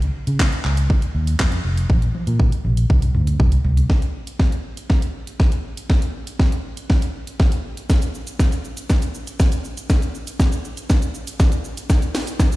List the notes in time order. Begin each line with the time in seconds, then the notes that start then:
0.02 closed hi-hat
0.27 C#3, closed hi-hat
0.40 kick, snare, clap
0.52 closed hi-hat
0.65 C#2, clap
0.77 closed hi-hat
0.90 kick
1.02 closed hi-hat
1.15 D#2
1.27 closed hi-hat
1.40 F2, kick, snare, clap
1.52 closed hi-hat
1.65 F1
1.77 closed hi-hat
1.90 A#1, kick, high tom
2.02 closed hi-hat
2.15 high tom
2.27 A#2, closed hi-hat
2.40 kick, mid tom
2.52 closed hi-hat
2.65 A#1, mid tom
2.77 closed hi-hat
2.90 C2, kick, mid tom
3.02 closed hi-hat, mid tom
3.15 D2, mid tom
3.27 closed hi-hat, mid tom
3.40 C2, kick, floor tom
3.52 closed hi-hat, floor tom
3.65 C2, floor tom
3.77 closed hi-hat, floor tom
3.90 kick, snare
4.02 closed hi-hat
4.27 closed hi-hat
4.40 kick, snare
4.52 closed hi-hat
4.77 closed hi-hat
4.90 kick, snare
5.02 closed hi-hat
5.27 closed hi-hat
5.40 kick, snare
5.52 closed hi-hat
5.77 closed hi-hat
5.90 kick, snare
6.02 closed hi-hat
6.27 closed hi-hat
6.39 kick, snare
6.52 closed hi-hat
6.77 closed hi-hat
6.90 kick, snare
7.02 closed hi-hat
7.27 closed hi-hat
7.40 kick, snare
7.52 closed hi-hat
7.77 closed hi-hat
7.90 kick, snare, shaker
8.02 closed hi-hat, shaker
8.15 shaker
8.27 closed hi-hat, shaker
8.39 kick, snare, shaker
8.52 closed hi-hat, shaker
8.65 shaker
8.77 closed hi-hat, shaker
8.90 kick, snare, shaker
9.02 closed hi-hat, shaker
9.14 shaker
9.27 closed hi-hat, shaker
9.40 kick, snare, shaker
9.52 closed hi-hat, shaker
9.65 shaker
9.77 closed hi-hat, shaker
9.90 kick, snare, shaker
10.02 closed hi-hat, shaker
10.15 shaker
10.27 closed hi-hat, shaker
10.40 kick, snare, shaker
10.52 closed hi-hat, shaker
10.65 shaker
10.77 closed hi-hat, shaker
10.90 kick, snare, shaker
11.02 closed hi-hat, shaker
11.15 shaker
11.27 closed hi-hat, shaker
11.40 kick, snare, shaker
11.52 closed hi-hat, shaker
11.65 shaker
11.77 closed hi-hat, shaker
11.90 kick, snare, shaker
12.02 closed hi-hat, shaker
12.15 snare, open hi-hat, shaker
12.27 closed hi-hat, shaker
12.40 kick, snare, shaker
12.52 closed hi-hat, shaker